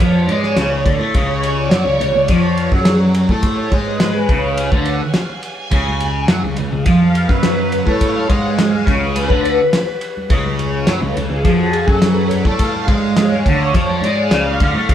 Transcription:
0.00 picked electric bass F2, distorted electric guitar F3, kick, ride
0.27 picked electric bass G#2, distorted electric guitar G#3, ride
0.43 snare
0.56 picked electric bass C#2, distorted electric guitar C#3, snare, ride
0.85 picked electric bass D2, distorted electric guitar D3, kick, ride
0.99 picked electric bass A2, distorted electric guitar A3
1.14 picked electric bass C#2, distorted electric guitar C#3, kick, ride
1.43 ride
1.71 picked electric bass F#2, distorted electric guitar F#3, snare, ride
1.85 picked electric bass C#2, distorted electric guitar C#3
2.00 picked electric bass C#2, distorted electric guitar C#3, ride
2.13 picked electric bass C#2, distorted electric guitar C#3
2.28 picked electric bass F2, distorted electric guitar F3, kick, ride
2.57 ride
2.71 picked electric bass F#2, distorted electric guitar F#3, kick
2.85 snare, ride
3.14 ride
3.29 picked electric bass A2, distorted electric guitar A3, kick
3.43 kick, ride
3.71 picked electric bass G#2, distorted electric guitar G#3, kick, ride
4.00 snare, ride
4.29 picked electric bass C#2, distorted electric guitar C#3, kick, ride
4.58 ride
4.72 picked electric bass D2, distorted electric guitar D3, kick
4.85 ride
5.14 snare, ride
5.43 ride
5.53 string machine G#5
5.71 picked electric bass C#2, distorted electric guitar C#3, kick, ride
5.88 high conga
6.00 ride, low conga
6.28 picked electric bass F#2, distorted electric guitar F#3, snare, ride
6.43 picked electric bass C#2, distorted electric guitar C#3, high conga
6.57 picked electric bass C#2, distorted electric guitar C#3, ride, low conga
6.72 picked electric bass C#2, distorted electric guitar C#3
6.86 picked electric bass F2, distorted electric guitar F3, kick, ride, high conga
7.02 high conga
7.14 string machine B4, ride
7.29 picked electric bass F#2, distorted electric guitar F#3, kick, snare
7.43 snare, ride
7.72 ride, low conga
7.86 picked electric bass A2, distorted electric guitar A3, kick, high conga
8.01 kick, ride
8.17 high conga
8.29 picked electric bass G#2, distorted electric guitar G#3, kick, ride, low conga
8.59 snare, ride
8.75 high conga
8.86 picked electric bass C#2, distorted electric guitar C#3, kick, ride, low conga
9.01 string machine B4
9.16 ride, high conga
9.30 picked electric bass D2, distorted electric guitar D3, kick, high conga
9.45 ride
9.73 snare, ride
10.01 ride
10.17 high conga
10.30 picked electric bass C#2, distorted electric guitar C#3, kick, ride
10.45 high conga
10.59 ride, low conga
10.87 picked electric bass F#2, distorted electric guitar F#3, snare, ride
11.01 picked electric bass C#2, distorted electric guitar C#3, high conga
11.15 picked electric bass C#2, distorted electric guitar C#3, ride, low conga
11.30 picked electric bass C#2, distorted electric guitar C#3
11.44 picked electric bass F2, distorted electric guitar F3, kick, ride, high conga
11.73 ride
11.87 picked electric bass F#2, distorted electric guitar F#3, kick
12.02 snare, ride
12.30 ride, low conga
12.45 picked electric bass A2, distorted electric guitar A3, kick, high conga
12.59 kick, ride, low conga
12.73 high conga
12.87 picked electric bass G#2, distorted electric guitar G#3, kick, ride, low conga
13.17 snare, ride
13.32 high conga
13.45 picked electric bass D2, distorted electric guitar D3, kick, ride, low conga
13.74 picked electric bass F2, distorted electric guitar F3, kick, ride, high conga
13.89 high conga
14.01 picked electric bass G#2, distorted electric guitar G#3, ride
14.31 picked electric bass C#2, distorted electric guitar C#3, snare, ride
14.60 picked electric bass D2, distorted electric guitar D3, kick, ride, low conga
14.74 picked electric bass A2, distorted electric guitar A3, high conga
14.89 picked electric bass C#2, distorted electric guitar C#3, kick, ride

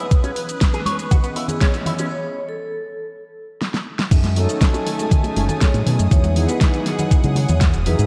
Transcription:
Already playing: vibraphone B4, string section D#6
0.11 fingered electric bass C#2, analog polysynth E3 C#4 D#4, string section B4, kick, closed hi-hat, shaker
0.24 clean electric guitar C#4, closed hi-hat, high bongo, shaker
0.36 analog polysynth E3 B3 C#4 D#4 B4, open hi-hat
0.49 closed hi-hat, shaker
0.61 kick, snare, closed hi-hat, shaker
0.74 clean electric guitar G#4, closed hi-hat, high bongo, shaker
0.86 clean electric guitar C#5, open hi-hat, high conga
0.99 closed hi-hat, shaker
1.11 fingered electric bass G#2, clean electric guitar F#4, kick, closed hi-hat, high bongo, low conga, shaker
1.23 analog polysynth E3 B3 C#4 G#4 D#5, clean electric guitar B3, closed hi-hat, shaker
1.36 fingered electric bass C#3, clean electric guitar E4, open hi-hat
1.48 vibraphone G#4, closed hi-hat, low conga, shaker
1.61 clean electric guitar C#4, vibraphone C#5, kick, snare, closed hi-hat, high bongo, shaker
1.74 fingered electric bass E2, closed hi-hat, shaker
1.86 fingered electric bass F#2, clean electric guitar E4, open hi-hat, low conga
1.99 fingered electric bass C#2, clean electric guitar C#4, closed hi-hat, high bongo, shaker
2.11 vibraphone C#5
2.23 vibraphone C#5
2.49 vibraphone A4
3.62 snare
3.74 snare
3.99 snare
4.11 fingered electric bass F#2, synth arpeggio sound D#3, analog polysynth F#3 A3 C#4 D#4 G#4, string section A3 G#5 D#6, kick, closed hi-hat, crash, shaker
4.24 synth arpeggio sound G#3, snare, closed hi-hat, high conga, shaker
4.35 synth arpeggio sound D#3, analog polysynth F#3 A3 C#4 D#4 A4, open hi-hat, high bongo
4.49 synth arpeggio sound A3, closed hi-hat, shaker
4.61 synth arpeggio sound D#3, kick, snare, closed hi-hat, shaker
4.74 synth arpeggio sound C#4, closed hi-hat, high bongo, shaker
4.86 synth arpeggio sound D#3, open hi-hat
4.99 synth arpeggio sound G#3, closed hi-hat, shaker
5.11 synth arpeggio sound D#3, fingered electric bass D#3, kick, closed hi-hat, low conga, shaker
5.23 analog polysynth F#3 A3 C#4 D#4 G#4, synth arpeggio sound A3, closed hi-hat, high bongo, shaker
5.36 fingered electric bass F#1, synth arpeggio sound D#3, open hi-hat, high conga
5.49 synth arpeggio sound C#4, vibraphone A4, closed hi-hat, low conga, shaker
5.61 synth arpeggio sound D#3, vibraphone C#5, kick, snare, closed hi-hat, high bongo, shaker
5.74 fingered electric bass A2, synth arpeggio sound G#3, closed hi-hat, shaker
5.86 fingered electric bass B2, synth arpeggio sound D#3, open hi-hat, low conga
5.99 fingered electric bass F#2, synth arpeggio sound A3, closed hi-hat, shaker
6.11 fingered electric bass E2, synth arpeggio sound D#3, analog polysynth F#3 B3 D#4 E4 G#4, string section G#4 F#5, vibraphone C#5, kick, closed hi-hat, high bongo, shaker
6.24 synth arpeggio sound F#3, vibraphone C#5, closed hi-hat, high conga, shaker
6.35 synth arpeggio sound D#3, analog polysynth F#3 B3 D#4 E4 G#4, open hi-hat
6.49 synth arpeggio sound G#3, vibraphone B4, closed hi-hat, high bongo, shaker
6.61 synth arpeggio sound D#3, kick, snare, closed hi-hat, shaker
6.73 synth arpeggio sound B3, closed hi-hat, shaker
6.86 synth arpeggio sound D#3, snare, open hi-hat
6.98 synth arpeggio sound F#3, closed hi-hat, high bongo, low conga, shaker
7.11 synth arpeggio sound D#3, kick, closed hi-hat, shaker
7.23 fingered electric bass C#3, analog polysynth F#3 B3 D#4 E4 G#4, synth arpeggio sound G#3, closed hi-hat, shaker
7.35 synth arpeggio sound D#3, vibraphone C#5, open hi-hat, high bongo, high conga
7.49 fingered electric bass E2, synth arpeggio sound B3, closed hi-hat, low conga, shaker
7.61 synth arpeggio sound D#3, kick, snare, closed hi-hat, shaker
7.74 fingered electric bass E1, synth arpeggio sound F#3, closed hi-hat, shaker
7.86 fingered electric bass E2, synth arpeggio sound D#3, analog polysynth F#3 B3 D#4 E4 G#4, vibraphone B4, open hi-hat, high bongo
7.99 fingered electric bass G#2, synth arpeggio sound G#3, closed hi-hat, shaker

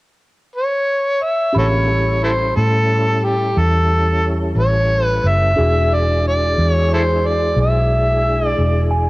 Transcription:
0.56 harmonica C#5
1.23 harmonica E5
1.53 fingered electric bass A1, tonewheel organ D3 G#3 A#3 F4, tine electric piano C#4 G4 B5
1.58 harmonica A4 C#5
1.87 tonewheel organ G3 C#4 E4 A4
2.24 harmonica E4 A4 C5
2.56 fingered electric bass A2, harmonica A4
3.25 harmonica G4
3.57 fingered electric bass E2, harmonica A4
4.55 fingered electric bass A1, harmonica C#5
5.05 harmonica B4
5.24 fingered electric bass F#1, harmonica E5
5.56 fingered electric bass E1, tonewheel organ G#3 D4 E4 G#4, tine electric piano D4 F#4 G#4
5.94 harmonica D5
6.28 harmonica D5
6.58 fingered electric bass E2
6.71 harmonica C#5
6.93 harmonica E4 A4 C5
7.26 harmonica D5
7.56 fingered electric bass B1, harmonica E5
8.47 harmonica D5
8.58 fingered electric bass E1
8.91 tine electric piano G#5

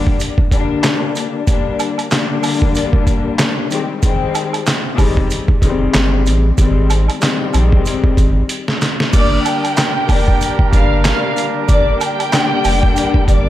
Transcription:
Already playing: string section D3 G3 A#3 D4
0.07 kick
0.20 closed hi-hat, maracas
0.38 kick
0.51 string section D3 G3 A#3 D4, kick, closed hi-hat, maracas
0.83 snare, clap, closed hi-hat, maracas
1.15 closed hi-hat, maracas
1.46 string section D3 G3 A#3 D4, kick, closed hi-hat, maracas
1.79 closed hi-hat, high woodblock, maracas
1.98 closed hi-hat, high woodblock
2.10 string section D3 G3 A#3 D4, snare, clap, closed hi-hat, maracas
2.43 open hi-hat, high woodblock, maracas
2.62 kick
2.75 closed hi-hat, maracas
2.93 kick
3.07 kick, closed hi-hat, maracas
3.39 snare, clap, closed hi-hat, maracas
3.70 string section D#3 G3 G#3 C4, closed hi-hat, maracas
4.01 string section D#3 G3 G#3 C4, kick, closed hi-hat, maracas
4.35 closed hi-hat, high woodblock, maracas
4.53 closed hi-hat, high woodblock
4.66 snare, clap, closed hi-hat, maracas
4.97 sub bass G1, string section D#3 G3 G#3 C4, kick, open hi-hat, high woodblock, maracas
5.17 kick
5.30 closed hi-hat, maracas
5.48 kick
5.62 sub bass F1, string section D#3 G3 G#3 C4, kick, closed hi-hat, maracas
5.94 sub bass G1, snare, clap, closed hi-hat, maracas
6.26 sub bass A1, closed hi-hat, maracas
6.57 sub bass G#1, string section D#3 G3 G#3 C4, kick, closed hi-hat, maracas
6.90 closed hi-hat, high woodblock, maracas
7.08 closed hi-hat, high woodblock
7.21 string section D#3 G3 G#3 C4, snare, clap, closed hi-hat, maracas
7.53 sub bass A#1, closed hi-hat, high woodblock, maracas
7.72 kick
7.85 closed hi-hat, maracas
8.04 kick
8.17 sub bass G#1, kick, closed hi-hat, maracas
8.49 closed hi-hat, maracas
8.68 snare
8.81 snare, closed hi-hat, maracas
9.00 snare
9.11 sub bass G1, string section D3 G3 A#3 D4, trumpet section G3 D4 A#4, violin section D5 D6, kick, closed hi-hat, crash, maracas
9.44 violin section G4 G5, closed hi-hat, high woodblock, maracas
9.64 closed hi-hat, high woodblock
9.77 snare, clap, closed hi-hat, maracas
10.07 sub bass F1, string section D3 G3 A#3 D4, kick, open hi-hat, high woodblock, maracas
10.28 kick
10.41 closed hi-hat, maracas
10.59 kick
10.72 sub bass G1, string section D3 G3 A#3 D4, violin section F5 F6, kick, closed hi-hat, maracas
11.04 violin section F5 F6, snare, clap, closed hi-hat, maracas
11.37 closed hi-hat, maracas
11.68 sub bass G1, string section D3 G3 A#3 D4, violin section D5 D6, kick, closed hi-hat, maracas
12.01 violin section G4 G5, closed hi-hat, high woodblock, maracas
12.19 closed hi-hat, high woodblock
12.31 string section D3 G3 A#3 D4, snare, clap, closed hi-hat, maracas
12.64 sub bass F1, open hi-hat, high woodblock, maracas
12.83 kick
12.96 closed hi-hat, maracas
13.14 kick
13.28 sub bass G1, violin section D5 D6, kick, closed hi-hat, maracas

